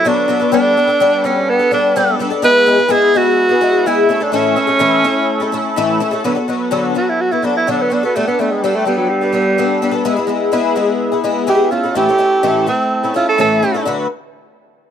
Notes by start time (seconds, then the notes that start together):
0.04 D3 F#3 B3 D4 F#4 A4
0.28 F#3 B3 F#4 A4
0.39 B3 F#4 A4
0.52 G3 B3 D4 A4
0.77 G3 B3 D4 A4
0.87 B3 D4 A4
1.00 G3 B3 D4 A4
1.24 G3 B3 C#4 D4 A4
1.50 B3
1.59 B3 D4 A4
1.71 G3 B3 D4 A4
1.96 G3 B3 D4 A4
2.19 G3 B3 D4 A4
2.30 B3 D4 A4
2.42 G#3 B3 E4 G#4 B4
2.66 G#3 B3 E4 G#4
2.78 B3 E4 G#4
2.88 G#3 B3 E4 G#4
3.14 G#3 B3 E4 F#4 G#4
3.49 B3 E4 G#4
3.61 G#3 B3 E4 G#4
3.86 G#3 B3 E4 G#4
4.09 A3 C#4 E4 A4
4.20 A3 C#4 D4 E4 A4
4.32 A2 E3 A3 C#4 E4 A4
4.56 A3 C#4 E4 A4
4.67 A3 C#4 E4 A4
4.79 A2 E3 A3 C#4 E4 A4
5.04 A3 C#4 E4 A4
5.40 A3 C#4 E4 A4
5.52 A3 C#4 E4 A4
5.76 A2 E3 A3 C#4 E4 A4
6.00 A3 C#4 E4 A4
6.11 A3 C#4 E4 A4
6.24 D3 F#3 B3 F#4 A4
6.35 B3 F#4 A4
6.48 F#3 B3 F#4 A4
6.71 D3 F#3 B3 F#4 A4
6.94 F#3 B3 F#4 A4
7.10 E4
7.21 F#4
7.31 B3 E4 F#4 A4
7.42 F#3 B3 D4 F#4 A4
7.57 E4
7.67 D3 F#3 B3 D4 F#4 A4
7.82 B3
7.90 F#3 B3 D4 F#4 A4
8.03 B3 F#4 A4
8.16 G3 A3 B3 D4 A4
8.27 B3 D4 A4
8.39 G3 A3 B3 D4 A4
8.52 G#3
8.63 G3 B3 D4 A4
8.75 A3
8.85 G3 B3 D4 A4
8.98 F#3
9.09 G3
9.21 B3 D4 A4
9.32 G3 B3 D4 A4
9.58 G3 B3 D4 A4
9.82 G3 B3 D4 A4
9.91 B3 D4 A4
10.05 G#3 B3 E4 G#4
10.17 B3 E4 G#4
10.27 G#3 B3 E4 G#4
10.52 G#3 B3 E4 G#4
10.76 G#3 B3 E4 G#4
11.12 B3 E4 G#4
11.24 G#3 B3 E4 G#4
11.47 G#3 B3 E4 G4 G#4
11.71 A3 C#4 E4 F4 A4
11.83 A3 C#4 E4 A4
11.95 A2 E3 A3 C#4 E4 G4 A4
12.09 A3 C#4 E4 A4
12.18 A3 C#4 E4 A4
12.43 A2 E3 A3 C#4 E4 A4
12.66 A3 C4 E4 A4
13.03 A3 C#4 E4 A4
13.14 A3 C#4 E4 F4 A4
13.29 A4
13.38 A2 E3 A3 C#4 E4 A4
13.62 A3 C#4 E4 A4
13.74 A3 C#4 E4 A4
13.85 D3 F#3 A3 F#4 B4